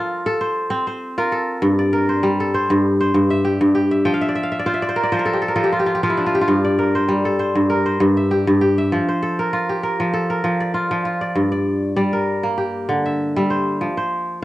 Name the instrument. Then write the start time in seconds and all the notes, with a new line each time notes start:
kora
Already playing: F3 F4 A4 A#4 C5
0.26 A4
0.41 C5
0.70 C4
0.87 C5
1.18 F4 A#4
1.32 A4
1.62 G2
1.79 D5
1.93 A#4
2.09 C5
2.23 G3
2.40 A4
2.54 C5
2.70 G2
3.01 C5
3.14 G2
3.30 E5
3.45 G4
3.61 G2
3.75 G4
3.91 E5
4.05 F3 G5
4.14 F5
4.21 E5
4.29 D5
4.35 E5
4.43 F5
4.52 E5
4.59 D5
4.66 F4 C5
4.74 E5
4.82 D5
4.89 C5
4.96 A#4
5.04 D5
5.12 F3 C5
5.19 A#4
5.26 A4
5.34 G4
5.42 A4
5.48 A#4
5.56 F3 A4
5.64 G4
5.73 F4
5.80 G4
5.86 F4
5.95 G4
6.03 F3 F4
6.10 E4
6.17 D4
6.26 F4
6.35 G4
6.41 F4
6.48 G2
6.65 D5
6.79 A#4
6.95 C5
7.08 G3
7.25 A4
7.39 C5
7.56 G2
7.70 A#4
7.86 C5
8.00 G2
8.17 E5
8.31 G4
8.47 G2
8.61 G4
8.78 E5
8.92 F3
9.08 C5
9.22 A4
9.39 A#4
9.53 F4
9.69 G4
9.83 A#4
10.00 F3
10.13 A4
10.30 A#4
10.44 F3
10.60 D5
10.74 F4
10.91 F3
11.05 F4
11.21 D5
11.35 G2
11.52 D5
11.97 G3 D5
12.13 A#4
12.43 A#3
12.58 G4
12.89 D3
13.06 E5
13.36 G3 E5
13.50 C5
13.81 F3
13.97 C5